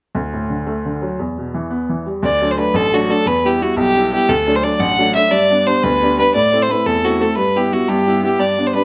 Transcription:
0.15 upright piano D2
0.33 upright piano A2
0.50 upright piano D3
0.67 upright piano A3
0.86 upright piano D3
1.02 upright piano F#3
1.19 upright piano E2
1.38 upright piano B2
1.54 upright piano E3
1.70 upright piano B3
1.89 upright piano E3
2.06 upright piano G3
2.22 upright piano D2, fiddle D5
2.41 upright piano F#3 A3 D4
2.51 fiddle C5
2.57 upright piano F#3 A3 D4, fiddle B4
2.74 upright piano A1, fiddle A4
2.93 upright piano F#3 A3 D4, fiddle F#4
3.09 upright piano F#3 A3 D4, fiddle A4
3.26 upright piano E2, fiddle B4
3.45 upright piano G3 B3 E4, fiddle G4
3.61 upright piano G3 B3 E4, fiddle F#4
3.77 upright piano B1, fiddle G4
3.96 upright piano G3 B3 E4
4.12 upright piano G3 B3 E4, fiddle G4
4.29 upright piano D2, fiddle A4
4.47 upright piano F#3 A3 D4
4.56 fiddle C5
4.63 upright piano F#3 A3 D4, fiddle D5
4.79 upright piano A1, fiddle F#5
4.98 upright piano F#3 A3 D4
5.15 upright piano F#3 A3 D4, fiddle E5
5.31 upright piano G2, fiddle D5
5.50 upright piano G3 B3 D4
5.66 upright piano G3 B3 D4, fiddle C5
5.83 upright piano D2, fiddle B4
6.02 upright piano G3 B3 D4
6.18 upright piano G3 B3 D4, fiddle B4
6.34 upright piano A2, fiddle D5
6.53 upright piano A3 C4 E4
6.62 fiddle C5
6.69 upright piano A3 C4 E4, fiddle B4
6.86 upright piano E2, fiddle A4
7.05 upright piano A3 C4 E4, fiddle F#4
7.20 upright piano A3 C4 E4, fiddle A4
7.37 upright piano G2, fiddle B4
7.55 upright piano G3 B3 E4, fiddle G4
7.72 upright piano G3 B3 E4, fiddle F#4
7.88 upright piano G2, fiddle G4
8.07 upright piano G3 B3 E4
8.23 upright piano G3 B3 E4, fiddle G4
8.39 upright piano G2, fiddle D5
8.58 upright piano G3 B3 D4
8.67 fiddle C5
8.74 upright piano G3 B3 D4, fiddle B4

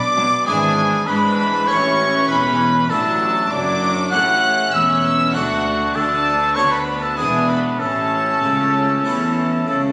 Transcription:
Already playing: harpsichord B2 B3 D4 F#4, oboe D5, violin section D6
0.16 double bass section B1, cello section B2, harpsichord B2, viola section F#3, violin section D4
0.46 double bass section G#1, cello section G#2, harpsichord G#2 B3 D4 E4, viola section E3, violin section D4 G#5, oboe G#4
1.06 double bass section G#2, viola section E3, harpsichord G#3, cello section G#3, violin section D4 B5, oboe B4
1.68 double bass section A1, harpsichord A2 A3 C#4 E4, cello section A2, viola section E3, violin section C#4 C#6, oboe C#5
2.28 double bass section E1, cello section E2, harpsichord E2, oboe B4, violin section B5
2.89 double bass section A1, harpsichord A2 A3 D4 F#4, cello section A2, viola section F#3, violin section D4 A5, oboe A4
3.51 double bass section F#1, harpsichord F#2, cello section F#2, viola section F#3, violin section D4 D6, oboe D5
4.11 double bass section A1, harpsichord A2 A3 C#4 A4, cello section A2, viola section A3, violin section C#4 F#6, oboe F#5
4.73 double bass section E1, harpsichord E2, cello section E2, viola section A3, violin section C#4 E6, oboe E5
4.82 violin section F#6
4.89 violin section E6
4.97 violin section F#6
5.04 violin section E6
5.32 harpsichord D2 A3 D4 F#4, cello section D2, double bass section D2, viola section A3, violin section D4 F#5, oboe F#4
5.94 double bass section D2, harpsichord D3, cello section D3, viola section A3, violin section D4 A5, oboe A4
6.55 harpsichord D2 B3 D4 F#4, cello section D2, double bass section D2, viola section B3, violin section D4 C#6, oboe C#5
6.71 oboe B4, violin section B5
7.02 oboe A4, violin section A5
7.17 double bass section E1, harpsichord E2 B3 D4 E4, cello section E2, viola section B3, violin section D4 G#5, oboe G#4
7.49 oboe B4, violin section B5
7.79 double bass section A1, harpsichord A2, cello section A2, viola section A3, violin section C#4 A5, oboe A4
8.42 double bass section C#2, cello section C#3, harpsichord C#3
9.05 double bass section E2, cello section E3, harpsichord E3 A3 C#4 E4
9.67 double bass section C#2, harpsichord C#3, cello section C#3, oboe A4

